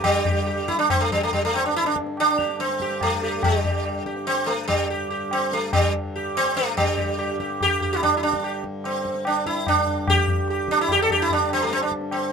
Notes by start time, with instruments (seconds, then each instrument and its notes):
0.04 harmonium G2, sitar G3, tabla na, tabla ge
0.25 sitar G4, tabla ge
0.46 sitar G4, tabla na
0.68 sitar E4, tabla ke
0.79 sitar D4, tabla te
0.90 sitar C4, tabla na, tabla ge
1.01 sitar A3
1.11 sitar G3, tabla ge
1.23 sitar A3
1.33 sitar G3, tabla tin, tabla ge
1.45 sitar A3
1.54 sitar C4, tabla na
1.66 sitar D4
1.74 sitar E4, tabla te
1.85 sitar D4, tabla te
1.96 tabla ke
2.07 tabla te
2.17 sitar D4, tabla na
2.39 sitar G4, tabla ke
2.49 tabla te
2.59 sitar C4, tabla te
2.70 tabla te
2.80 sitar G4, tabla ke
2.90 tabla te
3.01 sitar A3, tabla na, tabla ge
3.22 sitar G4, tabla te
3.43 sitar G3, tabla na, tabla ge
3.64 sitar G4, tabla ge
3.85 tabla na
4.06 sitar G4, tabla ke
4.16 tabla te
4.27 sitar C4, tabla na
4.46 sitar A3, tabla te
4.68 sitar G3, tabla na, tabla ge
4.90 sitar G4
5.10 sitar G4
5.31 sitar C4, tabla na
5.52 sitar A3, tabla te
5.73 sitar G3, tabla na, tabla ge
6.16 sitar G4
6.35 sitar C4, tabla na
6.56 sitar A3, tabla te
6.77 harmonium G2 D3, sitar G3, tabla na, tabla ge
6.97 sitar G4, tabla ge
7.19 sitar G4, tabla na
7.40 sitar G4, tabla ke
7.50 tabla te
7.61 sitar G4, tabla na, tabla ge
7.81 sitar G4, tabla ge
7.93 sitar E4
8.02 sitar D4, tabla tin, tabla ge
8.17 sitar E4
8.23 sitar D4, tabla na
8.33 tabla ke
8.44 sitar G4, tabla na
8.64 tabla ke
8.84 sitar C4, tabla na
9.05 tabla ke
9.15 tabla te
9.25 sitar D4, tabla na
9.46 sitar E4, tabla ke
9.67 sitar D4, tabla na, tabla ge
9.87 tabla ge
10.07 sitar G4, tabla na, tabla ge
10.28 tabla ge
10.48 sitar G4, tabla na
10.68 sitar D4, tabla ke
10.78 sitar E4, tabla te
10.88 sitar G4, tabla na, tabla ge
11.02 sitar A4
11.10 sitar G4, tabla ge
11.22 sitar E4
11.30 sitar D4, tabla tin, tabla ge
11.50 sitar C4, tabla na
11.63 sitar A3
11.71 sitar C4, tabla te
11.81 sitar D4, tabla te
11.92 tabla ke
12.01 tabla te
12.11 sitar C4, tabla na